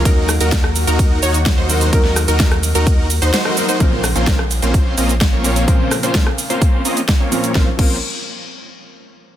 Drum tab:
CC |----------------|----------------|----------------|----------------|
RD |x---x---x---x---|x---x---x---x---|----------------|----------------|
HH |x-oxx-oxx-oxx-ox|x-oxxxoxx-oxx-ox|x-oxx-oxx-oxx-ox|x-oxx-oxx-oxx-ox|
SH |x-xxx-xxx-xxx-xx|x-xxx-xxx-xxx-xx|x-xxx-xxx-xxx-xx|x-xxx-xxx-xxx-xx|
SD |--r-or------o---|-or-or------or--|--r-or------o---|--r-or------o---|
BD |o---o---o---o---|o---o---o-------|o---o---o---o---|o---o---o---o---|

CC |--x-------------|
RD |----------------|
HH |----------------|
SH |----------------|
SD |o---------------|
BD |o-o-------------|